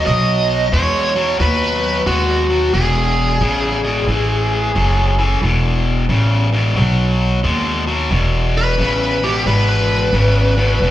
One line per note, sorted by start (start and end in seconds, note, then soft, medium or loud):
0.04 0.69 B1 medium
0.04 0.67 B2 medium
0.04 0.67 F#3 medium
0.04 0.73 D#5 loud
0.72 1.36 E2 medium
0.72 1.11 B2 medium
0.72 1.12 G#3 medium
0.72 1.36 C#5 medium
1.15 1.37 B2 medium
1.15 1.37 F#3 medium
1.39 2.03 D#2 medium
1.39 2.01 B2 medium
1.39 2.02 F#3 medium
1.39 2.03 B4 medium
2.06 2.70 D#2 medium
2.06 2.45 B2 medium
2.06 2.46 G#3 medium
2.06 2.76 F#4 medium
2.49 2.71 B2 medium
2.49 2.71 F#3 medium
2.73 3.37 E1 medium
2.73 3.36 E2 medium
2.73 3.36 B2 medium
2.73 5.38 G#4 medium
3.41 4.04 A1 medium
3.41 3.80 E2 medium
3.41 3.80 C#3 loud
3.84 4.05 E2 medium
3.84 4.06 B2 medium
4.07 4.71 A1 medium
4.07 4.70 A2 medium
4.07 4.70 E3 medium
4.75 5.39 F#1 medium
4.75 5.14 A2 medium
4.75 5.15 F#3 medium
5.18 5.40 A2 medium
5.18 5.40 E3 medium
5.41 6.05 E1 medium
5.41 6.05 E2 medium
5.41 6.05 B2 medium
6.09 6.73 A1 medium
6.09 6.49 E2 medium
6.09 6.49 C#3 medium
6.53 6.74 E2 medium
6.53 6.74 B2 medium
6.76 7.41 B1 medium
6.76 7.39 B2 medium
6.76 7.39 F#3 medium
7.43 8.08 D#2 medium
7.43 7.83 B2 medium
7.43 7.83 G#3 medium
7.87 8.09 B2 medium
7.87 8.09 F#3 medium
8.11 8.75 E1 medium
8.11 8.74 E2 medium
8.11 8.74 B2 medium
8.57 9.22 B4 medium
8.78 9.42 A1 medium
8.78 9.18 E2 medium
8.78 9.18 C#3 medium
9.22 9.44 E2 medium
9.22 9.44 B2 medium
9.22 9.46 G4 medium
9.46 10.10 G#1 medium
9.46 10.09 E2 medium
9.46 10.09 B2 medium
9.46 9.68 B4 medium
9.69 10.91 B4 medium
10.13 10.77 G#1 medium
10.13 10.53 E2 medium
10.13 10.53 C#3 medium
10.57 10.78 E2 medium
10.57 10.79 B2 medium
10.80 10.91 E1 medium
10.80 10.91 E2 medium
10.80 10.91 B2 medium